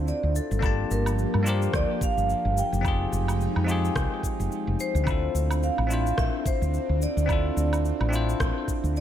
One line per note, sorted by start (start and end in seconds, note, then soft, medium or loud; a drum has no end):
0.00 0.10 D2 medium
0.00 0.59 C4 medium
0.00 0.64 C4 medium
0.00 0.59 D4 medium
0.00 0.61 D4 medium
0.00 0.64 E4 medium
0.00 0.62 F4 medium
0.00 0.64 A4 medium
0.00 0.61 C5 medium
0.08 0.34 D5 medium
0.08 shaker soft
0.23 0.38 D2 medium
0.35 0.87 A4 medium
0.35 shaker medium
0.51 0.83 G1 medium
0.51 shaker soft
0.59 5.03 F3 medium
0.59 1.41 A#3 medium
0.59 2.82 A#3 medium
0.59 1.42 D4 medium
0.59 1.43 F4 medium
0.59 2.82 G4 medium
0.59 kick loud
0.59 low woodblock medium
0.63 1.44 G4 medium
0.63 1.45 A5 loud
0.63 shaker soft
0.91 1.24 G1 medium
0.91 1.43 A#4 medium
0.91 shaker medium
1.06 low woodblock medium
1.06 shaker soft
1.19 shaker soft
1.34 1.66 G2 medium
1.34 low woodblock medium
1.43 2.80 A#3 medium
1.43 2.81 D4 medium
1.43 2.82 F4 medium
1.43 shaker medium
1.47 2.83 G4 medium
1.47 2.83 A#4 loud
1.47 1.75 C5 medium
1.62 shaker soft
1.73 1.83 D2 loud
1.73 2.03 D5 loud
1.73 kick loud
1.73 cross-stick medium
1.73 shaker soft
2.01 2.60 F5 loud
2.01 kick loud
2.01 shaker medium
2.17 2.33 G1 medium
2.17 shaker soft
2.29 shaker soft
2.45 2.60 G1 loud
2.57 3.10 G5 loud
2.57 shaker medium
2.72 3.05 F1 loud
2.72 shaker soft
2.81 5.05 G#3 medium
2.81 3.63 C4 medium
2.81 3.64 D#4 medium
2.81 5.05 D#4 medium
2.81 3.65 F4 medium
2.81 5.05 G5 medium
2.81 kick loud
2.81 low woodblock medium
2.81 shaker soft
2.86 3.66 G4 medium
2.86 3.67 G#4 loud
3.12 3.46 F1 medium
3.12 shaker medium
3.28 low woodblock medium
3.28 shaker soft
3.41 shaker soft
3.56 3.88 F2 loud
3.56 low woodblock medium
3.64 5.02 C4 medium
3.64 5.03 D#4 medium
3.64 5.04 F4 medium
3.69 5.05 G4 medium
3.69 5.06 G#4 loud
3.69 shaker medium
3.85 shaker soft
3.96 4.05 C2 medium
3.96 kick loud
3.96 cross-stick medium
3.96 shaker soft
4.23 kick medium
4.23 shaker medium
4.39 4.47 F1 medium
4.39 shaker soft
4.52 shaker soft
4.67 4.74 F1 medium
4.80 5.66 C5 medium
4.80 shaker medium
4.95 5.27 D2 medium
4.95 shaker soft
5.04 5.86 C4 medium
5.04 9.00 C4 medium
5.04 5.87 D4 medium
5.04 9.00 D4 medium
5.04 5.88 E4 medium
5.04 kick loud
5.04 low woodblock medium
5.04 shaker soft
5.09 5.88 F4 medium
5.09 5.89 A4 medium
5.34 5.68 D2 medium
5.34 shaker medium
5.51 low woodblock medium
5.51 shaker soft
5.63 6.20 F5 loud
5.63 shaker soft
5.78 6.10 A1 loud
5.78 low woodblock medium
5.87 7.25 C4 medium
5.87 7.26 D4 medium
5.87 7.26 E4 medium
5.87 shaker medium
5.92 7.27 F4 medium
5.92 7.28 C5 medium
6.07 shaker soft
6.18 6.28 A1 medium
6.18 6.47 E5 loud
6.18 kick loud
6.18 cross-stick medium
6.18 shaker soft
6.46 7.04 C5 medium
6.46 kick loud
6.46 shaker medium
6.62 6.77 D2 medium
6.62 shaker soft
6.74 shaker soft
6.89 7.05 D2 loud
7.02 8.09 D5 medium
7.02 shaker medium
7.17 7.49 D2 loud
7.17 shaker soft
7.26 8.08 C4 medium
7.26 8.09 D4 medium
7.26 8.10 E4 medium
7.26 kick loud
7.26 low woodblock medium
7.26 shaker soft
7.31 8.10 F4 medium
7.31 8.11 A4 loud
7.57 7.91 D2 medium
7.57 shaker medium
7.73 low woodblock medium
7.73 shaker soft
7.85 shaker soft
8.00 8.33 A1 loud
8.00 low woodblock medium
8.09 9.00 C4 medium
8.09 9.00 D4 medium
8.09 9.00 E4 medium
8.13 9.00 F4 medium
8.13 9.00 C5 loud
8.13 shaker medium
8.29 shaker soft
8.40 8.50 A1 loud
8.40 kick loud
8.40 cross-stick medium
8.40 shaker soft
8.68 kick medium
8.68 shaker medium
8.84 8.99 D2 medium
8.84 shaker soft
8.96 9.00 D5 medium
8.96 shaker soft